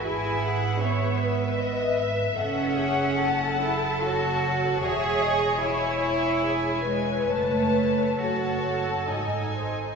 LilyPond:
<<
  \new Staff \with { instrumentName = "Violin section" } { \time 3/4 \key fis \dorian \tempo 4 = 73 gis''8 fis''8 e''2~ | e''4 a''2 | gis''4 gis''4 gis''4 | a''4 a''4 gis''4 | }
  \new Staff \with { instrumentName = "Violin section" } { \time 3/4 \key fis \dorian b'2 dis''8 e''8 | fis''2 cis''4 | e''8 dis''8 cis''4 cis''4~ | cis''2 dis''8 bis'8 | }
  \new Staff \with { instrumentName = "Viola section" } { \time 3/4 \key fis \dorian gis'4 cis''8 b'4. | a'8 gis'8 a'2 | cis''4 cis''4 gis'8 b'8~ | b'4 a'2 | }
  \new Staff \with { instrumentName = "Cello section" } { \time 3/4 \key fis \dorian e'4 b4. r8 | cis'4. e'8 fis'4 | gis'4 e'4. gis8 | a4 fis'4 dis'4 | }
  \new Staff \with { instrumentName = "Double bass section" } { \clef bass \time 3/4 \key fis \dorian gis,,2. | fis,,2. | e,,2. | fis,,4 fis,,4 gis,,4 | }
>>